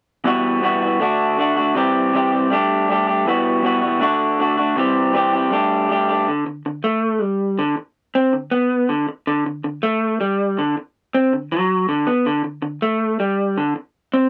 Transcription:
0.24 0.61 E2 medium
0.24 0.61 B2 medium
0.24 0.62 E3 medium
0.24 0.62 G3 medium
0.24 0.63 B3 medium
0.24 0.63 F#4 medium
0.62 0.99 E2 medium
0.62 0.99 B2 medium
0.62 0.83 E3 medium
0.62 0.82 G3 medium
0.62 0.81 B3 medium
0.62 0.80 F#4 medium
0.81 0.99 E3 medium
0.81 1.00 G3 medium
0.81 1.00 B3 medium
0.81 0.99 F#4 medium
1.00 1.36 D3 medium
1.00 1.38 A3 medium
1.00 1.39 D4 medium
1.00 1.39 F#4 loud
1.37 1.75 D3 medium
1.37 1.58 A3 medium
1.37 1.57 D4 medium
1.37 1.55 F#4 medium
1.57 1.76 A3 medium
1.57 1.75 D4 medium
1.57 1.75 F#4 medium
1.75 2.12 C3 medium
1.75 2.13 E3 medium
1.75 2.14 G3 medium
1.75 2.15 C4 medium
1.75 2.16 G4 medium
2.13 2.50 C3 medium
2.13 2.50 E3 medium
2.13 2.33 G3 medium
2.13 2.32 C4 medium
2.13 2.31 G4 medium
2.32 2.49 G3 medium
2.32 2.51 C4 medium
2.32 2.50 G4 medium
2.50 2.88 G3 medium
2.50 2.89 A3 medium
2.50 2.90 D4 loud
2.50 2.91 G4 medium
2.89 3.26 G3 medium
2.89 3.09 A3 medium
2.89 3.07 D4 medium
2.89 3.06 G4 medium
3.07 3.27 A3 medium
3.07 3.26 D4 medium
3.07 3.26 G4 medium
3.26 3.61 E2 medium
3.26 3.62 B2 medium
3.26 3.63 E3 medium
3.26 3.63 G3 medium
3.26 3.64 B3 medium
3.26 3.65 F#4 medium
3.62 4.00 E2 medium
3.62 4.00 B2 medium
3.62 3.83 E3 medium
3.62 3.82 G3 medium
3.62 3.82 B3 medium
3.62 3.80 F#4 loud
3.81 3.99 E3 medium
3.81 4.01 G3 medium
3.81 4.01 B3 medium
3.81 4.00 F#4 medium
4.00 4.38 D3 medium
4.00 4.39 A3 medium
4.00 4.39 D4 loud
4.00 4.40 F#4 loud
4.39 4.76 D3 medium
4.39 4.60 A3 medium
4.39 4.58 D4 medium
4.39 4.56 F#4 medium
4.57 4.77 A3 medium
4.57 4.77 D4 medium
4.57 4.76 F#4 medium
4.76 5.12 C3 medium
4.76 5.13 E3 medium
4.76 5.13 G3 medium
4.76 5.14 C4 medium
4.76 5.15 G4 medium
5.13 5.51 C3 medium
5.13 5.50 E3 medium
5.13 5.34 G3 medium
5.13 5.33 C4 medium
5.13 5.32 G4 medium
5.33 5.49 G3 medium
5.33 5.52 C4 medium
5.33 5.51 G4 medium
5.50 5.88 G3 medium
5.50 5.89 A3 medium
5.50 5.90 D4 loud
5.50 5.91 G4 medium
5.89 6.26 G3 medium
5.89 6.10 A3 medium
5.89 6.09 D4 medium
5.89 6.07 G4 medium
6.09 6.28 A3 medium
6.09 6.27 D4 medium
6.09 6.27 G4 medium
6.28 6.45 D3 medium
6.46 6.62 D3 medium
6.66 6.81 D3 medium
6.84 7.22 A3 loud
7.22 7.59 G3 medium
7.59 7.76 D3 medium
7.77 muted clean electric guitar stroke soft
8.15 8.33 C4 medium
8.33 8.49 D3 medium
8.51 8.89 B3 loud
8.89 9.07 D3 medium
9.09 muted clean electric guitar stroke medium
9.27 9.45 D3 medium
9.46 9.61 D3 medium
9.64 9.80 D3 medium
9.83 10.20 A3 loud
10.21 10.58 G3 loud
10.58 10.76 D3 medium
10.78 muted clean electric guitar stroke medium
11.15 11.33 C4 medium
11.33 11.48 D3 medium
11.52 11.88 F#3 loud
11.89 12.07 D3 medium
12.07 12.26 B3 medium
12.26 12.43 D3 medium
12.44 12.60 D3 medium
12.62 12.78 D3 medium
12.82 13.19 A3 medium
13.20 13.57 G3 medium
13.57 13.75 D3 medium
13.76 muted clean electric guitar stroke medium
14.14 14.29 C4 medium

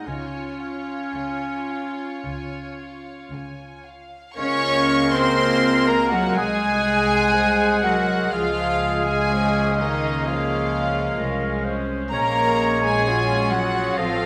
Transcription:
0.06 1.00 C#2 medium
0.06 1.00 C#3 medium
0.06 3.85 C#4 medium
0.06 3.85 F4 medium
0.06 3.86 C#5 medium
0.06 0.59 G#5 soft
0.62 1.16 F5 soft
1.14 2.10 C#2 soft
1.14 2.10 C#3 medium
1.14 1.70 G#5 soft
1.70 2.25 F5 soft
2.24 3.17 C#2 soft
2.24 3.17 C#3 medium
2.24 2.76 G#5 soft
2.81 3.33 F5 soft
3.31 4.23 C#2 medium
3.31 4.24 C#3 soft
3.31 3.85 G#5 soft
3.86 4.38 F5 medium
4.36 6.33 C#2 medium
4.36 6.33 G#3 medium
4.36 6.33 A#3 medium
4.36 5.09 C#4 medium
4.36 5.10 C#4 medium
4.36 5.34 F4 medium
4.36 6.39 A#4 loud
4.36 5.09 C#5 loud
4.36 6.39 F5 medium
4.36 5.09 C#6 loud
4.36 5.17 C#6 loud
5.12 5.88 C4 medium
5.12 5.88 C5 medium
5.12 5.87 C6 loud
5.12 5.88 C6 medium
5.39 6.35 F4 medium
5.87 6.13 A#3 medium
5.87 6.12 A#4 medium
5.87 6.12 A#5 loud
5.87 6.15 A#5 medium
6.11 6.37 F#3 medium
6.11 6.36 F#4 medium
6.11 6.36 F#5 medium
6.11 6.38 F#5 medium
6.36 8.32 C2 medium
6.36 7.83 G#3 medium
6.36 8.28 G#3 medium
6.36 8.33 G#3 medium
6.36 7.84 G#3 loud
6.36 7.83 G#4 loud
6.36 7.36 G#4 medium
6.36 9.30 G#4 medium
6.36 8.32 F#5 medium
6.36 7.83 G#5 loud
6.36 7.86 G#5 loud
7.34 7.85 C5 medium
7.83 8.32 F#3 medium
7.83 8.33 F#4 medium
7.83 8.32 A#4 medium
7.83 8.32 F#5 loud
7.83 8.33 F#5 medium
8.32 11.15 C#2 medium
8.32 9.03 F3 medium
8.32 9.05 F3 medium
8.32 10.22 G#3 medium
8.32 9.28 G#3 medium
8.32 9.04 F4 medium
8.32 10.22 G#4 medium
8.32 9.05 F5 loud
8.32 10.23 F5 medium
8.32 9.08 F5 medium
9.04 9.78 G#3 medium
9.04 9.79 G#3 medium
9.04 9.76 G#4 medium
9.04 9.78 G#5 loud
9.04 9.81 G#5 medium
9.30 9.78 F3 medium
9.30 12.08 C#4 medium
9.78 10.26 D#3 medium
9.78 10.27 D#3 medium
9.78 11.16 A#3 medium
9.78 10.26 D#4 medium
9.78 10.26 D#5 medium
9.78 10.30 D#5 medium
10.24 11.65 F3 medium
10.24 11.82 G#3 medium
10.24 11.64 F4 medium
10.24 10.90 G#4 medium
10.24 11.81 F5 medium
10.24 11.66 F5 medium
10.28 11.66 F3 medium
10.28 11.66 F5 medium
11.17 12.12 C2 medium
11.17 12.13 G#3 medium
11.17 11.66 A#4 medium
11.65 12.12 C5 medium
12.10 13.98 A#1 medium
12.10 13.09 G#3 medium
12.10 12.79 A#3 medium
12.10 12.80 A#3 medium
12.10 13.05 C#4 medium
12.10 12.80 A#4 medium
12.10 14.00 C#5 medium
12.10 13.10 C#5 loud
12.10 12.85 A#5 medium
12.10 12.79 A#5 loud
12.83 13.52 G#3 medium
12.83 13.54 G#3 medium
12.83 13.53 G#4 medium
12.83 13.55 G#5 medium
12.83 13.53 G#5 loud
13.08 13.98 F#3 medium
13.08 13.97 C#4 medium
13.08 13.53 F4 medium
13.08 14.00 F4 medium
13.52 13.98 F#3 medium
13.52 13.99 F#4 medium
13.52 13.99 G#4 medium
13.52 13.97 F#5 medium
13.52 13.99 F#5 loud
13.97 14.26 A1 medium
13.97 14.26 F3 medium
13.97 14.26 C4 medium
13.97 14.26 F4 medium
13.97 14.26 A4 medium
13.97 14.26 D#5 medium
13.97 14.26 F5 loud
13.97 14.26 F5 medium

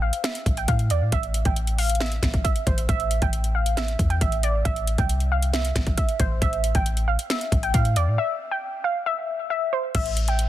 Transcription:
0.00 0.11 A1 loud
0.00 0.19 F5 medium
0.13 closed hi-hat medium
0.24 0.55 E5 medium
0.24 finger snap medium
0.24 snare loud
0.24 closed hi-hat medium
0.35 closed hi-hat medium
0.46 0.67 A1 loud
0.46 kick loud
0.46 closed hi-hat medium
0.57 0.66 G5 medium
0.57 closed hi-hat soft
0.68 0.92 A2 loud
0.68 0.85 F5 medium
0.68 kick medium
0.68 closed hi-hat medium
0.79 closed hi-hat medium
0.90 1.03 E2 medium
0.90 1.07 D5 medium
0.90 closed hi-hat medium
1.01 1.12 A2 loud
1.12 1.44 A1 loud
1.12 1.44 E5 loud
1.12 kick loud
1.12 closed hi-hat medium
1.23 closed hi-hat medium
1.34 closed hi-hat medium
1.45 2.20 A1 loud
1.45 1.77 G5 medium
1.45 kick medium
1.45 closed hi-hat medium
1.56 closed hi-hat medium
1.67 closed hi-hat soft
1.78 1.95 F5 medium
1.78 open hi-hat medium
1.90 closed hi-hat medium
1.95 closed hi-hat medium
2.00 2.42 E5 loud
2.00 finger snap medium
2.00 snare loud
2.00 closed hi-hat medium
2.06 closed hi-hat soft
2.12 closed hi-hat medium
2.23 2.44 A1 loud
2.23 finger snap medium
2.23 kick loud
2.23 snare medium
2.23 closed hi-hat medium
2.34 kick medium
2.34 closed hi-hat soft
2.44 2.61 E5 medium
2.44 kick medium
2.44 closed hi-hat medium
2.56 closed hi-hat medium
2.67 2.88 A1 loud
2.67 2.83 C5 medium
2.67 kick medium
2.67 closed hi-hat medium
2.78 closed hi-hat medium
2.89 3.21 A1 loud
2.89 3.20 E5 loud
2.89 kick loud
2.89 closed hi-hat medium
3.00 closed hi-hat medium
3.11 closed hi-hat medium
3.22 3.96 A1 loud
3.22 3.53 G5 medium
3.22 kick medium
3.22 closed hi-hat medium
3.33 closed hi-hat medium
3.44 closed hi-hat soft
3.55 3.72 F5 medium
3.66 closed hi-hat medium
3.77 4.08 E5 loud
3.77 finger snap medium
3.77 snare loud
3.77 closed hi-hat medium
3.88 closed hi-hat medium
3.99 4.20 E2 loud
3.99 kick loud
3.99 closed hi-hat medium
4.10 4.18 G5 medium
4.10 closed hi-hat soft
4.21 4.64 A1 loud
4.21 4.38 E5 medium
4.21 kick medium
4.21 closed hi-hat medium
4.32 closed hi-hat medium
4.43 4.60 D5 medium
4.43 closed hi-hat medium
4.65 4.97 A1 loud
4.65 4.96 E5 loud
4.65 kick loud
4.65 closed hi-hat medium
4.76 closed hi-hat medium
4.87 closed hi-hat medium
4.98 5.72 C2 loud
4.98 5.30 G5 medium
4.98 kick medium
4.98 closed hi-hat medium
5.09 closed hi-hat medium
5.20 closed hi-hat soft
5.32 5.48 F5 medium
5.42 closed hi-hat medium
5.53 5.95 E5 loud
5.53 finger snap medium
5.53 snare loud
5.53 closed hi-hat medium
5.65 closed hi-hat medium
5.76 5.97 A1 loud
5.76 finger snap medium
5.76 kick loud
5.76 snare medium
5.76 closed hi-hat medium
5.87 kick medium
5.87 closed hi-hat medium
5.97 6.14 E5 medium
5.97 kick medium
5.97 closed hi-hat medium
6.09 closed hi-hat medium
6.19 6.41 A1 loud
6.19 6.36 C5 medium
6.19 kick loud
6.19 closed hi-hat medium
6.42 6.74 A1 loud
6.42 6.73 E5 loud
6.42 kick loud
6.42 closed hi-hat medium
6.53 closed hi-hat medium
6.64 closed hi-hat medium
6.75 7.17 A1 loud
6.75 7.06 G5 medium
6.75 kick medium
6.75 closed hi-hat medium
6.86 closed hi-hat medium
6.97 closed hi-hat medium
7.08 7.24 F5 medium
7.19 closed hi-hat medium
7.30 7.61 E5 medium
7.30 finger snap medium
7.30 snare loud
7.30 closed hi-hat medium
7.41 closed hi-hat medium
7.52 7.73 A1 loud
7.52 kick loud
7.52 closed hi-hat medium
7.63 7.71 G5 medium
7.63 closed hi-hat medium
7.74 7.98 A2 loud
7.74 7.91 F5 medium
7.74 kick medium
7.74 closed hi-hat medium
7.85 closed hi-hat medium
7.96 8.09 E2 loud
7.96 8.13 D5 medium
7.96 closed hi-hat medium
8.07 8.18 A2 loud
8.18 8.49 E5 loud
8.51 8.82 G5 medium
8.84 9.01 F5 medium
9.06 9.48 E5 loud
9.50 9.67 E5 medium
9.73 9.89 C5 medium
9.95 10.49 A1 loud
9.95 10.26 E5 loud
9.95 kick loud
9.95 closed hi-hat medium
9.95 crash loud
10.06 closed hi-hat medium
10.17 closed hi-hat medium
10.28 10.49 G5 medium
10.28 closed hi-hat medium
10.39 closed hi-hat medium

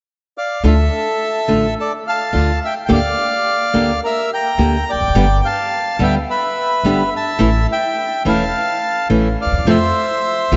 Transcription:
0.38 0.63 D5 soft
0.38 0.63 F5 medium
0.64 0.87 D2 medium
0.64 0.73 D3 medium
0.64 0.73 A3 medium
0.64 0.73 D4 medium
0.64 0.73 F4 medium
0.64 1.74 A4 medium
0.64 1.75 E5 medium
1.48 1.73 A1 soft
1.48 1.65 D3 soft
1.48 1.65 A3 medium
1.48 1.66 D4 soft
1.48 1.66 F4 medium
1.79 1.92 A4 soft
1.79 1.93 D5 medium
2.07 2.59 F5 medium
2.07 2.60 A5 medium
2.33 2.58 D2 soft
2.33 2.50 D3 soft
2.33 2.50 A3 soft
2.33 2.50 D4 medium
2.33 2.51 F4 medium
2.64 2.73 E5 soft
2.64 2.75 G5 medium
2.85 2.98 D3 medium
2.85 2.98 A#3 medium
2.85 2.99 D4 medium
2.85 2.91 G5 medium
2.90 3.14 D2 medium
2.90 2.99 G4 medium
2.90 4.00 D5 medium
2.94 4.01 F5 medium
3.74 3.98 D2 soft
3.74 3.91 D3 soft
3.74 3.91 A#3 soft
3.74 3.91 D4 soft
3.74 3.91 G4 medium
4.04 4.30 A#4 medium
4.04 4.31 E5 medium
4.33 4.85 G5 medium
4.33 4.91 A#5 medium
4.58 4.82 D2 medium
4.58 4.76 D3 medium
4.58 4.76 A#3 medium
4.58 4.76 D4 soft
4.58 4.76 G4 medium
4.90 5.00 E1 soft
4.90 5.41 D5 medium
4.90 5.47 G5 medium
5.01 5.07 F1 soft
5.08 5.14 F#1 medium
5.15 5.39 G1 medium
5.15 5.24 D3 medium
5.15 5.24 G3 medium
5.15 5.25 B3 medium
5.15 5.24 D4 medium
5.15 5.25 G4 medium
5.45 5.97 F5 medium
5.45 6.03 A5 medium
5.99 6.23 D2 soft
5.99 6.16 D3 medium
5.99 6.16 G3 medium
5.99 6.17 B3 medium
5.99 6.17 D4 medium
5.99 6.17 G4 soft
5.99 6.15 E5 medium
6.04 6.15 G5 medium
6.30 7.09 B4 medium
6.30 7.14 E5 medium
6.83 7.08 G1 soft
6.83 7.01 D3 soft
6.83 7.01 G3 soft
6.83 7.01 B3 medium
6.83 7.02 D4 soft
6.83 7.02 G4 medium
7.16 7.67 E5 medium
7.16 7.67 A5 medium
7.39 7.64 A1 medium
7.39 7.49 E3 medium
7.39 7.49 A3 medium
7.39 7.49 C#4 medium
7.39 7.49 E4 medium
7.72 8.23 E5 medium
7.72 8.23 G5 medium
8.25 8.49 E1 soft
8.25 8.42 E3 soft
8.25 8.42 A3 medium
8.25 8.43 C#4 soft
8.25 8.43 E4 medium
8.25 9.08 F5 medium
8.25 9.08 A5 medium
9.10 9.34 A1 soft
9.10 9.27 E3 medium
9.10 9.27 A3 soft
9.10 9.27 C#4 medium
9.10 9.27 E4 medium
9.41 9.67 D5 soft
9.41 9.67 F5 medium
9.46 9.52 D2 soft
9.52 9.57 D#2 soft
9.58 9.65 E2 medium
9.65 9.90 F2 medium
9.65 9.76 C3 medium
9.65 9.76 F3 medium
9.65 9.76 A3 medium
9.65 9.76 C4 medium
9.65 9.76 F4 medium
9.65 10.57 C5 medium
9.69 10.57 E5 medium
10.51 10.57 C2 soft
10.51 10.57 C3 medium
10.51 10.57 F3 medium
10.51 10.57 A3 medium
10.51 10.57 C4 soft
10.51 10.57 F4 medium

